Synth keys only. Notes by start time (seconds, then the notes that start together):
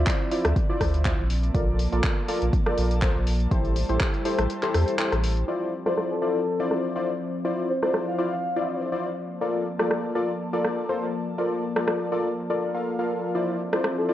Already playing: E4 F4 C5 D5
0.31 E4 F4 C5 D5
0.70 E4 F4 C5 D5
1.05 E4 F4 C5 D5
1.54 F4 A4 A#4 D5
1.92 F4 A4 A#4 D5
2.28 F4 A4 A#4 D5
2.66 F4 A4 A#4 D5
3.02 F4 A4 A#4 C5
3.51 E4 G4 A4 C5
3.89 E4 G4 A4 C5
4.25 E4 G4 A4 C5
4.63 E4 G4 A4 C5
4.99 E4 G4 A4 C5
5.48 E4 F4 C5 D5
5.86 E4 F4 C5 D5
6.22 E4 F4 C5 D5
6.60 E4 F4 C5 D5
6.96 E4 F4 C5 D5
7.45 E4 F4 C5 D5
7.83 E4 F4 C5 D5
8.18 E4 F4 C5 D5
8.56 E4 F4 C5 D5
8.92 E4 F4 C5 D5
9.41 F4 A4 A#4 D5
9.79 F4 A4 A#4 D5
10.15 F4 A4 A#4 D5
10.53 F4 A4 A#4 D5
10.89 F4 A4 A#4 C5
11.38 F4 A4 A#4 D5
11.76 F4 A4 A#4 D5
12.12 F4 A4 A#4 D5
12.50 F4 A4 A#4 D5
12.74 F4 A4 A#4 F5
12.99 F4 A4 A#4 F5
13.35 E4 F4 C5 D5
13.73 E4 F4 C5 D5
14.09 E4 F4 C5 D5